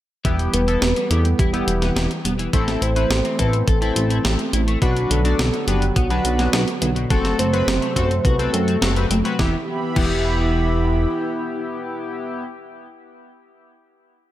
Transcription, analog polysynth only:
0.25 0.64 B3 loud
0.25 0.64 E4 medium
0.25 0.64 G4 loud
0.68 0.83 B3 medium
0.68 0.83 E4 medium
0.68 0.83 A4 loud
1.10 1.26 B3 medium
1.10 1.26 E4 medium
1.10 1.26 G4 loud
1.53 1.93 B3 medium
1.53 1.93 E4 medium
1.53 1.93 G4 medium
1.96 2.06 B3 medium
1.96 2.06 E4 medium
1.96 2.06 G4 medium
2.53 2.93 C4 loud
2.53 2.93 E4 medium
2.53 2.93 A4 loud
2.96 3.12 C4 medium
2.96 3.12 E4 medium
2.96 3.12 B4 loud
3.39 3.55 C4 medium
3.39 3.55 E4 medium
3.39 3.55 A4 medium
3.82 4.21 C4 medium
3.82 4.21 E4 medium
3.82 4.21 A4 loud
4.25 4.35 C4 medium
4.25 4.35 E4 medium
4.25 4.35 A4 medium
4.82 5.21 D4 loud
4.82 5.21 F#4 medium
4.82 5.21 B4 loud
5.25 5.40 D4 medium
5.25 5.40 F#4 medium
5.25 5.40 D5 loud
5.68 5.83 D4 medium
5.68 5.83 F#4 medium
5.68 5.83 B4 loud
6.11 6.50 D4 medium
6.11 6.50 F#4 medium
6.11 6.50 B4 medium
6.54 6.63 D4 medium
6.54 6.63 F#4 medium
6.54 6.63 B4 medium
7.10 7.50 C4 loud
7.10 7.50 F#4 medium
7.10 7.50 A4 loud
7.53 7.69 C4 medium
7.53 7.69 F#4 medium
7.53 7.69 B4 loud
7.96 8.12 C4 medium
7.96 8.12 F#4 medium
7.96 8.12 A4 loud
8.39 8.78 C4 medium
8.39 8.78 F#4 medium
8.39 8.79 A4 loud
8.82 8.92 C4 medium
8.82 8.92 F#4 medium
8.82 8.92 A4 medium
8.96 9.06 C4 medium
8.96 9.06 F#4 medium
8.96 9.06 B4 medium
9.25 9.36 C4 loud
9.25 9.36 F#4 medium
9.25 9.36 B4 loud
9.39 9.55 B3 medium
9.39 9.55 E4 medium
9.39 9.55 G4 loud
9.96 12.44 B3 medium
9.96 12.44 E4 medium
9.96 12.44 G4 medium

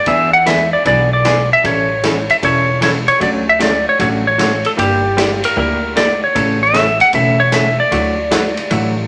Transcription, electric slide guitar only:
0.08 0.31 E5 loud
0.33 0.46 F#5 medium
0.47 0.73 E5 loud
0.73 0.86 D5 medium
0.87 1.10 D5 loud
1.13 1.49 D5 loud
1.53 1.66 E5 loud
1.66 2.32 C#5 loud
2.31 2.36 E5 medium
2.45 2.80 C#5 loud
2.83 2.90 C#5 medium
3.08 3.22 C#5 medium
3.23 3.29 D5 medium
3.49 3.61 E5 medium
3.62 3.85 D5 medium
3.89 4.00 C#5 medium
4.01 4.08 C#5 loud
4.27 4.67 C#5 loud
4.66 4.71 A4 medium
4.79 5.45 G4 loud
5.45 5.57 A#4 medium
5.59 5.95 A#4 medium
5.97 6.23 D5 loud
6.24 6.63 C#5 loud
6.63 7.01 E5 medium
7.01 7.14 F#5 medium
7.15 7.41 E5 medium
7.40 7.54 C#5 loud
7.54 7.79 E5 medium
7.80 9.07 D5 medium

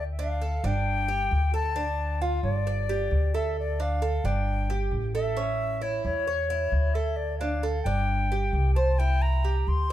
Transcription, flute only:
0.21 0.67 F5 medium
0.66 1.54 G5 loud
1.55 2.23 A5 loud
2.22 2.43 F5 medium
2.44 3.36 D5 loud
3.35 3.57 E5 medium
3.59 3.83 D5 medium
3.81 4.27 F5 medium
4.26 4.88 G5 medium
5.15 5.84 E5 medium
5.82 6.05 C#5 medium
6.05 6.96 C#5 medium
6.94 7.18 E5 medium
7.16 7.38 D5 medium
7.39 7.82 F5 medium
7.83 8.71 G5 loud
8.75 9.00 A5 loud
8.99 9.23 G5 loud
9.22 9.70 A#5 loud
9.68 9.93 C6 loud

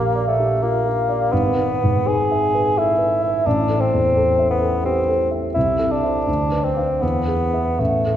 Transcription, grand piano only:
0.00 1.28 A#1 soft
0.00 1.34 A#2 soft
0.00 0.40 G4 soft
0.16 0.53 D5 soft
0.40 0.76 G4 soft
0.63 0.86 F4 soft
0.86 1.22 G4 soft
1.09 1.32 D5 soft
1.33 3.42 G#1 soft
1.58 1.98 B4 soft
1.84 2.22 G#2 soft
2.07 2.45 B4 soft
2.31 2.68 E5 soft
2.54 2.91 B4 soft
2.77 3.00 A4 soft
2.98 3.36 B4 soft
3.22 3.46 E5 soft
3.46 5.52 A1 soft
3.69 4.07 A4 soft
3.94 4.31 E2 soft
4.17 4.53 A4 soft
4.39 4.76 E5 soft
4.62 4.99 A4 soft
4.85 5.08 G4 soft
5.08 5.46 A4 soft
5.31 5.55 E5 soft
5.56 6.26 C2 soft
5.79 6.18 A4 soft
6.03 6.25 C5 soft
6.03 6.25 E5 soft
6.27 6.99 D2 soft
6.52 6.75 B4 soft
6.77 6.99 B4 soft
6.77 7.00 F5 soft
7.02 7.77 E2 soft
7.27 7.69 G#4 soft
7.53 7.77 B4 soft
7.53 7.77 E5 soft
7.79 8.17 A1 soft
8.06 8.17 A4 soft

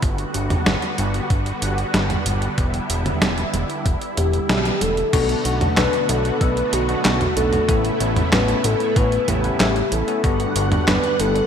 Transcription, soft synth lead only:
4.17 4.83 G4 loud
4.81 5.45 A4 loud
5.77 6.07 B4 loud
6.09 6.43 A4 loud
6.41 6.74 B4 loud
6.73 7.36 F#4 loud
7.37 7.97 A4 loud
8.33 8.66 B4 loud
8.65 8.98 A4 loud
8.96 9.30 B4 loud
9.28 9.94 G4 loud
9.92 10.56 A4 medium
10.88 11.21 B4 loud
11.20 11.47 A4 loud

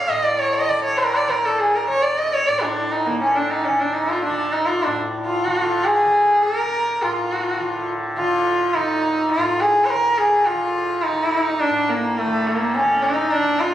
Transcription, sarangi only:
0.00 0.11 F5 medium
0.09 0.25 D#5 medium
0.23 0.41 D5 medium
0.39 0.56 C#5 medium
0.55 0.71 D#5 medium
0.69 0.83 D5 medium
0.84 1.00 C#5 medium
0.99 1.17 A#4 medium
1.15 1.32 D5 medium
1.30 1.47 A#4 medium
1.46 1.61 A4 medium
1.60 1.77 G#4 medium
1.75 1.88 A#4 medium
1.89 2.04 C#5 medium
2.03 2.20 D5 medium
2.18 2.35 D#5 medium
2.33 2.49 C#5 medium
2.48 2.64 D5 medium
2.63 2.93 D4 medium
2.92 3.08 D#4 medium
3.07 3.21 A#3 medium
3.22 3.38 C#4 medium
3.36 3.52 D4 medium
3.51 3.67 D#4 medium
3.65 3.82 C#4 medium
3.81 3.96 D4 medium
3.95 4.11 D#4 medium
4.10 4.24 F4 medium
4.24 4.54 D4 medium
4.53 4.68 D#4 medium
4.67 4.85 F4 medium
4.83 4.97 D4 medium
5.26 5.87 F4 medium
5.85 6.45 G#4 medium
6.43 7.04 A#4 medium
7.02 7.89 F4 medium
8.18 8.76 F4 medium
8.75 9.31 D#4 medium
9.31 9.62 F4 medium
9.60 9.86 G#4 medium
9.85 9.92 C#5 medium
9.90 10.20 A#4 loud
10.18 10.48 G#4 medium
10.47 11.05 F4 medium
11.03 11.62 D#4 medium
11.60 11.91 D4 medium
11.89 12.20 A#3 medium
12.18 12.49 A3 medium
12.47 12.76 A#3 medium
12.75 13.05 C#4 medium
13.03 13.33 D#4 medium
13.32 13.62 D4 medium
13.60 13.74 F4 medium

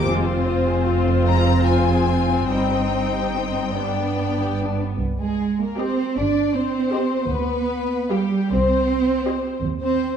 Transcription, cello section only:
0.08 2.51 F2 medium
2.50 4.75 G2 soft
5.19 5.56 G#3 medium
5.59 5.79 A#3 medium
5.77 6.16 C4 medium
6.16 6.54 D4 medium
6.53 7.29 C4 medium
7.29 8.09 B3 medium
8.11 8.51 G3 medium
8.52 9.64 C4 medium
9.82 10.17 C4 medium

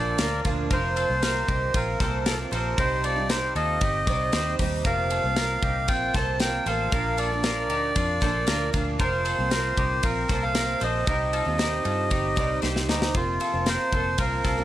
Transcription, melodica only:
0.00 0.41 D5 loud
0.73 1.79 C5 loud
1.76 2.19 A#4 medium
2.20 2.27 A#4 medium
2.27 2.39 A4 medium
2.54 2.80 A#4 medium
2.79 3.05 C5 loud
3.04 3.31 D5 loud
3.30 3.54 C5 loud
3.56 4.55 D#5 loud
4.86 5.92 F5 loud
5.89 6.16 G5 loud
6.15 6.39 A5 loud
6.41 6.68 G5 loud
6.66 7.20 F5 loud
7.18 8.70 D5 loud
9.00 10.07 C5 loud
10.04 10.44 A#4 loud
10.43 10.83 F5 loud
10.83 12.60 D#5 loud
12.89 13.16 D#4 medium
13.16 13.69 F4 loud
13.68 14.21 C5 loud
14.20 14.64 A#4 loud

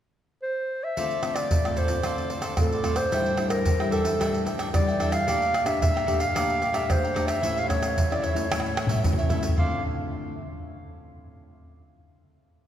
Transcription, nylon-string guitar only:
0.97 1.48 D3 medium
0.97 1.13 A3 medium
0.97 1.13 C4 soft
0.97 1.13 F4 medium
1.23 1.59 A3 medium
1.23 1.59 C4 soft
1.23 1.60 F4 medium
1.50 2.02 A2 medium
1.64 1.87 A3 medium
1.64 1.87 C4 medium
1.64 1.87 F4 medium
1.88 1.99 A3 medium
1.88 1.99 C4 medium
1.88 2.00 F4 medium
2.04 2.55 D3 medium
2.04 2.54 A3 medium
2.04 2.54 C4 soft
2.04 2.54 F4 medium
2.58 3.09 A2 medium
2.58 2.81 A3 medium
2.58 2.81 C4 medium
2.58 2.81 F4 medium
2.83 3.09 A3 medium
2.83 3.09 C4 medium
2.83 3.09 F4 medium
3.11 3.63 A2 medium
3.11 3.34 G3 soft
3.11 3.34 D4 medium
3.11 3.35 E4 medium
3.37 3.63 G3 medium
3.37 3.63 D4 medium
3.37 3.64 E4 medium
3.65 4.17 E3 medium
3.79 4.02 G3 medium
3.79 4.02 D4 medium
3.79 4.02 E4 medium
4.04 4.14 G3 medium
4.04 4.14 D4 medium
4.04 4.15 E4 medium
4.19 4.71 A2 medium
4.19 4.69 G3 medium
4.19 4.69 D4 soft
4.19 4.69 E4 medium
4.73 5.25 E3 medium
4.73 4.89 G3 medium
4.73 4.89 D4 medium
4.73 4.90 E4 medium
4.99 5.17 G3 medium
4.99 5.17 D4 soft
4.99 5.17 E4 medium
5.27 5.78 A#2 medium
5.27 5.53 A3 medium
5.27 5.53 D4 medium
5.27 5.53 G4 medium
5.65 6.03 A3 medium
5.65 6.03 D4 medium
5.65 6.03 G4 medium
5.81 6.32 A#2 medium
6.07 6.24 A3 medium
6.07 6.24 D4 medium
6.07 6.24 G4 medium
6.35 6.86 A#2 medium
6.35 6.61 A3 medium
6.35 6.61 D4 medium
6.35 6.61 G4 medium
6.74 7.11 A3 medium
6.74 7.11 D4 medium
6.74 7.11 G4 medium
6.89 7.40 A#2 medium
7.15 7.38 A3 medium
7.15 7.39 D4 medium
7.15 7.39 G4 medium
7.42 7.94 A2 medium
7.42 7.66 A3 medium
7.42 7.66 C#4 soft
7.42 7.66 E4 medium
7.69 7.95 A3 medium
7.69 7.95 C#4 soft
7.69 7.95 E4 medium
7.96 8.48 E3 medium
8.11 8.33 A3 medium
8.11 8.33 C#4 medium
8.11 8.34 E4 medium
8.35 8.45 A3 medium
8.35 8.46 C#4 medium
8.35 8.46 E4 medium
8.51 9.02 A2 medium
8.51 9.00 A3 medium
8.51 9.01 C#4 soft
8.51 9.01 E4 medium
9.05 9.56 E3 medium
9.05 9.27 A3 medium
9.05 9.28 C#4 medium
9.05 9.28 E4 medium
9.31 9.56 A3 soft
9.31 9.56 C#4 medium
9.31 9.57 E4 medium
9.58 10.36 D3 medium
9.58 10.36 A3 medium
9.58 10.36 C4 medium
9.58 10.36 F4 medium

